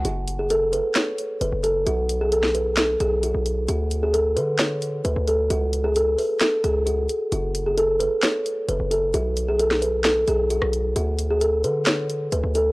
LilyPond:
<<
  \new Staff \with { instrumentName = "Kalimba" } { \time 4/4 \key fis \minor \tempo 4 = 132 fis'8. gis'16 a'8 b'8 cis''4 b'8 a'8 | fis'8. gis'16 a'8 b'8 a'8 gis'8 fis'4 | fis'8. gis'16 a'8 b'8 cis''4 b'8 a'8 | fis'8. gis'16 a'8 b'8 a'8 gis'8 fis'4 |
fis'8. gis'16 a'8 b'8 cis''4 b'8 a'8 | fis'8. gis'16 a'8 b'8 a'8 gis'8 fis'4 | fis'8. gis'16 a'8 b'8 cis''4 b'8 a'8 | }
  \new Staff \with { instrumentName = "808-style bass" } { \clef bass \time 4/4 \key fis \minor fis,,4.~ fis,,16 r4 r16 fis,,16 fis,,8. | b,,2~ b,,8 b,,8. b,,8. | d,4. d4. d,16 d,8. | cis,4. r4 cis,4 r8 |
fis,,4.~ fis,,16 r4 r16 fis,,16 fis,,8. | b,,2~ b,,8 b,,8. b,,8. | d,4. d4. d,16 d,8. | }
  \new DrumStaff \with { instrumentName = "Drums" } \drummode { \time 4/4 hh8 hh8 hh8 hh8 <hc hh sn>8 hh8 hh8 hh8 | hh8 hh8 hh16 sn16 hh8 <hc hh sn>8 hh8 hh8 hh8 | hh8 hh8 hh8 hh8 <hc hh sn>8 hh8 hh8 hh8 | hh8 hh8 hh8 hho8 <hc hh sn>8 hh8 hh8 hh8 |
hh8 hh8 hh8 hh8 <hc hh sn>8 hh8 hh8 hh8 | hh8 hh8 hh16 sn16 hh8 <hc hh sn>8 hh8 hh16 ss16 hh8 | hh8 hh8 hh8 hh8 <hc hh sn>8 hh8 hh8 hh8 | }
>>